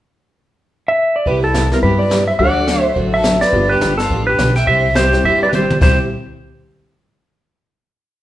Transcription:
0.88 1.16 E5 medium
1.16 1.27 D5 medium
1.25 1.71 C2 medium
1.25 1.45 C3 medium
1.25 1.45 G3 soft
1.25 1.45 B3 medium
1.25 1.46 E4 medium
1.25 1.43 G4 medium
1.25 1.46 G4 soft
1.25 1.43 B4 medium
1.25 brush sweep soft
1.25 kick soft
1.41 1.70 E4 medium
1.41 1.72 A4 medium
1.54 1.65 C3 medium
1.54 1.65 G3 medium
1.54 1.65 B3 medium
1.54 1.66 E4 medium
1.54 1.65 G4 medium
1.54 snare medium
1.54 hi-hat pedal medium
1.72 2.09 G3 medium
1.72 2.09 B3 medium
1.72 2.09 C4 medium
1.72 2.09 E4 medium
1.72 1.77 F4 medium
1.72 1.78 A#4 medium
1.72 snare soft
1.83 2.28 G2 medium
1.83 2.02 C3 medium
1.83 2.02 G3 medium
1.83 2.02 B3 medium
1.83 2.02 E4 medium
1.83 2.02 G4 medium
1.83 1.99 G4 medium
1.83 2.00 B4 medium
1.83 brush sweep medium
1.83 kick soft
1.99 2.27 B4 medium
1.99 2.27 D5 medium
2.10 2.21 C3 medium
2.10 2.21 G3 medium
2.10 2.22 B3 medium
2.10 2.22 E4 medium
2.10 2.22 G4 medium
2.10 snare medium
2.10 hi-hat pedal medium
2.28 2.34 C5 medium
2.28 2.33 E5 medium
2.38 2.85 D2 medium
2.38 2.58 D3 medium
2.38 2.58 F#3 soft
2.38 3.18 F#3 medium
2.38 2.58 A3 medium
2.38 3.18 A3 medium
2.38 2.58 D4 medium
2.38 3.18 D4 medium
2.38 2.58 F#4 medium
2.38 3.18 F#4 medium
2.38 2.93 D5 medium
2.38 2.80 F#5 loud
2.38 brush sweep soft
2.38 kick soft
2.67 2.78 D3 medium
2.67 2.78 F#3 medium
2.67 2.78 A3 medium
2.67 2.78 D4 medium
2.67 2.78 F#4 medium
2.67 snare medium
2.67 hi-hat pedal soft
2.80 2.92 E5 loud
2.95 3.42 A1 medium
2.95 3.15 D3 medium
2.95 3.15 F#3 medium
2.95 3.15 A3 medium
2.95 3.15 D4 medium
2.95 3.16 F#4 medium
2.95 brush sweep soft
2.95 kick soft
3.14 3.40 A4 medium
3.14 3.43 E5 medium
3.23 3.34 D3 medium
3.23 3.35 F#3 medium
3.23 3.35 A3 medium
3.23 3.35 D4 medium
3.23 3.35 F#4 medium
3.23 snare medium
3.23 hi-hat pedal medium
3.41 3.68 B4 medium
3.41 3.71 D5 loud
3.41 snare soft
3.53 3.76 G1 medium
3.53 3.72 D3 soft
3.53 3.72 F3 soft
3.53 4.32 G3 medium
3.53 4.32 B3 medium
3.53 3.72 B3 medium
3.53 4.32 D4 medium
3.53 3.72 D4 medium
3.53 4.32 F4 medium
3.53 3.72 G4 medium
3.53 brush sweep medium
3.53 kick soft
3.69 3.97 G4 medium
3.69 3.97 B4 medium
3.81 4.05 G1 medium
3.81 3.92 D3 medium
3.81 3.92 F3 medium
3.81 3.92 B3 medium
3.81 3.93 D4 medium
3.81 3.93 G4 medium
3.81 snare medium
3.81 hi-hat pedal medium
3.98 4.26 F4 medium
3.98 4.26 A4 medium
3.98 snare soft
4.10 4.34 A1 medium
4.10 4.29 D3 soft
4.10 4.29 F3 medium
4.10 4.30 B3 medium
4.10 4.30 D4 medium
4.10 4.30 G4 medium
4.10 brush sweep soft
4.10 kick soft
4.27 4.54 G4 medium
4.27 4.53 B4 loud
4.39 4.63 B1 medium
4.39 4.50 D3 medium
4.39 4.50 F3 medium
4.39 4.50 B3 medium
4.39 4.50 D4 medium
4.39 4.50 G4 medium
4.39 snare medium
4.39 hi-hat pedal medium
4.55 4.67 E5 medium
4.55 4.68 G5 medium
4.55 snare soft
4.67 5.13 C2 medium
4.67 4.86 C3 medium
4.67 4.87 G3 medium
4.67 4.86 C4 medium
4.67 4.87 E4 medium
4.67 4.87 G4 medium
4.67 4.94 C5 medium
4.67 4.97 E5 loud
4.67 brush sweep soft
4.67 kick soft
4.95 5.07 C3 medium
4.95 5.07 G3 medium
4.95 5.07 C4 medium
4.95 5.07 E4 medium
4.95 5.22 G4 medium
4.95 5.07 G4 medium
4.95 5.25 C5 medium
4.95 snare medium
4.95 hi-hat pedal medium
5.13 5.51 G3 medium
5.13 5.51 C4 medium
5.13 5.51 E4 medium
5.13 5.51 G4 medium
5.13 snare soft
5.24 5.70 G1 medium
5.24 5.44 C3 medium
5.24 5.44 G3 medium
5.24 5.44 C4 medium
5.24 5.44 E4 medium
5.24 5.45 G4 medium
5.24 5.44 C5 medium
5.24 5.42 E5 loud
5.24 brush sweep medium
5.24 kick soft
5.42 5.48 B4 medium
5.42 5.49 D5 medium
5.49 5.64 C3 medium
5.49 5.64 C4 medium
5.49 5.55 G4 medium
5.49 5.53 B4 medium
5.49 hi-hat pedal medium
5.49 mid tom soft
5.53 5.64 G3 medium
5.53 5.64 E4 medium
5.53 5.64 G4 medium
5.53 5.77 G4 medium
5.53 5.77 C5 medium
5.70 mid tom medium
5.81 5.97 C2 medium
5.81 5.95 C3 medium
5.81 5.97 G3 medium
5.81 5.95 G3 medium
5.81 5.97 C4 medium
5.81 5.95 C4 medium
5.81 5.95 E4 medium
5.81 5.97 E4 medium
5.81 5.97 G4 medium
5.81 5.98 G4 medium
5.81 5.96 G4 medium
5.81 5.98 C5 medium
5.81 kick medium
5.81 snare medium
5.81 crash medium

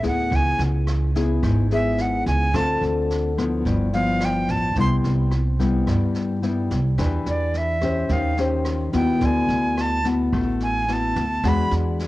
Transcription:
0.00 0.29 D2 medium
0.00 0.29 A2 medium
0.00 1.10 B3 medium
0.00 1.10 E4 medium
0.00 1.10 G#4 medium
0.00 kick soft
0.00 snare soft
0.07 0.37 F#5 medium
0.30 0.57 C#2 medium
0.30 1.39 C#3 medium
0.30 kick medium
0.30 snare soft
0.36 0.61 G#5 medium
0.59 1.38 C#2 medium
0.59 snare soft
0.87 cross-stick medium
0.87 snare soft
1.15 1.66 B3 medium
1.15 1.66 E4 medium
1.15 1.66 G#4 medium
1.15 kick soft
1.15 snare soft
1.43 2.22 G#1 medium
1.43 2.51 G#2 medium
1.43 kick medium
1.43 cross-stick medium
1.43 snare soft
1.71 2.50 B3 medium
1.71 2.50 E4 medium
1.71 2.50 G#4 medium
1.71 2.03 E5 medium
1.71 snare soft
1.98 2.27 F#5 medium
1.98 snare soft
2.26 2.52 C#2 medium
2.26 2.57 G#5 medium
2.26 kick soft
2.26 snare soft
2.53 2.80 D2 loud
2.53 3.62 D3 medium
2.53 3.32 C4 medium
2.53 3.33 F4 medium
2.53 3.33 A4 medium
2.53 2.82 A5 medium
2.53 kick medium
2.53 cross-stick medium
2.53 snare soft
2.81 3.61 D2 medium
2.81 snare soft
3.10 snare soft
3.38 3.88 F3 medium
3.38 3.89 B3 medium
3.38 3.89 E4 medium
3.38 kick soft
3.38 cross-stick medium
3.38 snare soft
3.65 4.44 G1 medium
3.65 4.74 G2 medium
3.65 kick medium
3.65 snare soft
3.93 4.72 F3 medium
3.93 4.72 B3 medium
3.93 4.72 E4 medium
3.93 4.26 F5 medium
3.93 snare soft
4.20 cross-stick medium
4.20 snare soft
4.25 4.52 G5 medium
4.48 4.74 A1 medium
4.48 4.77 A5 medium
4.48 kick soft
4.48 snare soft
4.75 5.02 C2 medium
4.75 5.85 C3 soft
4.75 5.32 G3 medium
4.75 5.32 B3 medium
4.75 5.32 E4 medium
4.75 kick medium
4.75 snare soft
4.80 4.95 C6 medium
5.04 5.83 C2 medium
5.04 snare soft
5.31 cross-stick soft
5.31 snare soft
5.59 6.38 G3 medium
5.59 6.38 B3 medium
5.59 6.38 E4 medium
5.59 kick soft
5.59 snare soft
5.87 6.95 G2 medium
5.87 6.67 G2 medium
5.87 kick medium
5.87 cross-stick medium
5.87 snare soft
6.15 snare soft
6.42 6.78 G3 medium
6.42 6.79 B3 soft
6.42 6.79 E4 soft
6.42 snare soft
6.71 6.96 C2 medium
6.71 kick soft
6.71 snare soft
6.98 7.24 E2 medium
6.98 8.07 E3 medium
6.98 7.77 D4 medium
6.98 7.77 G4 medium
6.98 7.77 B4 medium
6.98 kick medium
6.98 cross-stick medium
6.98 snare soft
7.26 8.05 E2 medium
7.26 7.59 D5 medium
7.26 snare soft
7.54 8.14 E5 medium
7.54 snare soft
7.82 8.33 C#4 medium
7.82 8.33 G4 medium
7.82 8.33 C5 medium
7.82 kick soft
7.82 cross-stick medium
7.82 snare soft
8.09 8.89 D#2 medium
8.09 9.18 D#3 medium
8.09 8.39 F5 medium
8.09 kick medium
8.09 snare soft
8.37 8.89 C#4 soft
8.37 8.89 G4 medium
8.37 8.90 C5 medium
8.37 snare soft
8.65 cross-stick medium
8.65 snare soft
8.93 9.19 D#2 medium
8.93 10.00 B3 medium
8.93 10.00 E4 medium
8.93 10.01 F#4 medium
8.93 9.27 G5 medium
8.93 kick soft
8.93 snare soft
9.21 9.47 D2 medium
9.21 10.30 D3 medium
9.21 kick medium
9.21 snare soft
9.25 9.82 G#5 medium
9.49 10.28 D2 medium
9.49 snare soft
9.78 10.06 A5 medium
9.78 cross-stick medium
9.78 snare soft
10.05 10.84 B3 medium
10.05 10.84 E4 medium
10.05 10.84 F#4 medium
10.05 kick soft
10.05 snare soft
10.32 11.12 A1 medium
10.32 11.41 A3 medium
10.32 kick medium
10.32 cross-stick medium
10.32 snare soft
10.60 10.94 G#5 medium
10.60 snare soft
10.88 11.24 B3 soft
10.88 11.24 E4 soft
10.88 11.24 F#4 medium
10.88 snare soft
10.93 11.50 A5 medium
11.16 11.42 D2 medium
11.16 kick soft
11.16 snare soft
11.44 11.69 E2 loud
11.44 12.08 E3 medium
11.44 12.08 G#3 soft
11.44 12.08 D4 medium
11.44 12.08 F#4 medium
11.44 kick medium
11.44 cross-stick medium
11.44 snare soft
11.48 11.74 B5 medium
11.71 12.08 E2 medium
11.71 snare soft
11.99 snare soft

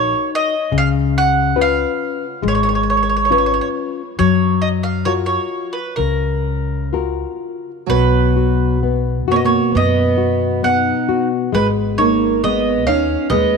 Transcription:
0.00 0.12 A#1 medium
0.00 0.54 D#4 soft
0.00 0.54 F#4 soft
0.00 0.55 A#4 medium
0.00 0.29 C#5 medium
0.35 0.76 D#5 loud
0.72 1.83 C#2 medium
0.72 1.54 C#3 medium
0.78 0.88 F5 loud
1.18 1.60 F#5 loud
1.56 2.25 C#4 medium
1.56 2.26 F4 soft
1.56 2.25 B4 medium
1.61 2.48 F5 medium
2.42 3.58 G#1 medium
2.42 3.28 G#3 medium
2.48 2.52 C#5 medium
2.55 2.59 C#5 medium
2.63 2.67 C#5 medium
2.69 2.74 C#5 soft
2.75 2.80 C#5 soft
2.83 2.88 C#5 soft
2.90 2.95 C#5 medium
2.97 3.02 C#5 soft
3.03 3.08 C#5 soft
3.09 3.15 C#5 soft
3.17 3.23 C#5 medium
3.25 3.31 C#5 soft
3.30 4.01 C#4 soft
3.30 4.02 F4 soft
3.30 4.02 B4 medium
3.30 3.37 C#5 medium
3.38 3.45 C#5 medium
3.46 3.53 C#5 medium
3.54 3.60 C#5 medium
3.61 3.67 C#5 medium
4.19 5.36 F#2 medium
4.19 5.04 F#3 medium
4.19 4.61 C#5 medium
4.62 4.68 D#5 medium
4.83 5.05 F5 medium
5.05 5.79 F4 soft
5.05 5.80 F#4 soft
5.05 5.79 A#4 soft
5.05 5.12 C#5 medium
5.26 5.72 C#5 medium
5.73 5.96 B4 medium
5.96 7.23 C#2 medium
5.96 6.90 C#3 medium
5.96 6.89 A#4 medium
6.93 7.70 F4 soft
6.93 7.71 F#4 soft
6.93 7.71 A#4 soft
7.86 9.29 B1 medium
7.86 11.49 B2 medium
7.86 8.77 F#3 medium
7.86 8.79 B4 loud
8.36 8.81 F#4 soft
8.83 9.27 B3 medium
9.28 9.59 F#2 medium
9.28 9.37 A#3 medium
9.28 9.72 F#4 soft
9.28 9.36 C#5 medium
9.36 9.42 B3 medium
9.36 9.43 D#5 medium
9.44 9.73 A#3 medium
9.44 9.76 C#5 medium
9.72 10.91 F#2 medium
9.72 10.17 B3 medium
9.72 10.60 B3 medium
9.77 10.68 D#5 medium
10.18 10.62 F#4 medium
10.63 11.07 B3 medium
10.63 11.28 D#4 medium
10.63 11.27 F#5 medium
11.09 11.52 F#4 medium
11.52 12.86 G#1 medium
11.52 12.42 G#3 medium
11.52 11.67 G#3 medium
11.52 11.67 B4 medium
11.98 12.41 A#3 medium
11.98 12.41 D#4 soft
11.98 12.39 C#5 medium
12.44 12.86 G#3 medium
12.44 12.84 B3 medium
12.44 12.88 D#5 medium
12.86 13.15 D#2 medium
12.86 13.27 C#4 medium
12.86 13.30 D#4 soft
12.86 13.31 F5 medium
13.30 13.57 D#2 loud
13.30 13.57 G#3 medium
13.30 13.57 B3 medium
13.30 13.57 D#5 medium

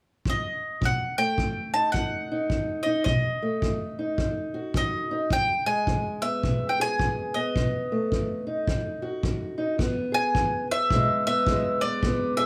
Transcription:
0.25 kick medium
0.30 0.86 D#5 medium
0.81 1.33 B2 medium
0.81 kick medium
0.85 1.18 F#5 medium
1.18 3.05 A3 soft
1.18 1.70 G5 medium
1.38 1.90 D#3 medium
1.38 kick medium
1.74 2.30 D#4 medium
1.74 1.92 A5 medium
1.92 2.47 F#2 medium
1.92 2.80 F#5 medium
1.92 kick medium
2.32 2.85 D#4 medium
2.50 3.03 D#3 medium
2.50 kick medium
2.83 3.05 D#4 medium
2.83 3.03 D#5 medium
3.04 3.59 B2 medium
3.04 4.14 D#5 medium
3.04 kick medium
3.42 5.30 A3 soft
3.62 4.16 D#3 medium
3.62 kick medium
3.99 5.10 D#4 soft
4.18 4.71 F#2 medium
4.18 kick medium
4.54 5.29 F#4 medium
4.74 5.27 D#3 medium
4.74 5.29 D#5 medium
4.74 kick medium
5.11 5.30 D#4 medium
5.31 5.84 E2 medium
5.31 5.65 G5 medium
5.31 kick medium
5.66 7.54 G#3 medium
5.66 6.24 G#5 medium
5.87 6.40 E3 medium
5.87 kick medium
6.22 7.35 B3 soft
6.22 6.71 E5 medium
6.43 6.96 B2 medium
6.43 kick medium
6.69 6.78 G5 medium
6.80 7.54 G#4 medium
6.80 7.38 G#5 loud
6.99 7.52 E3 medium
6.99 kick medium
7.34 8.46 B3 medium
7.34 9.54 D#5 medium
7.56 8.08 B2 medium
7.56 kick medium
7.92 9.78 A3 medium
8.12 8.64 D#3 medium
8.12 kick medium
8.47 9.57 D#4 medium
8.68 9.20 F#2 medium
8.68 kick medium
9.02 9.77 F#4 medium
9.23 9.76 D#3 medium
9.23 kick medium
9.58 9.77 D#4 medium
9.78 10.31 E2 medium
9.78 11.27 B3 medium
9.78 kick medium
10.12 12.37 G#4 medium
10.12 10.66 G#5 medium
10.34 10.87 E3 medium
10.34 kick medium
10.71 11.23 E5 medium
10.90 11.44 B2 medium
10.90 11.48 G#3 medium
10.90 kick medium
11.27 11.83 B3 medium
11.27 11.81 E5 loud
11.47 12.00 E3 medium
11.47 12.46 G#3 medium
11.47 kick medium
11.81 12.04 B3 medium
11.81 12.34 D5 medium
12.03 12.46 E2 medium
12.03 12.46 B3 medium
12.03 kick medium
12.37 12.46 G#4 medium
12.37 12.46 E5 medium

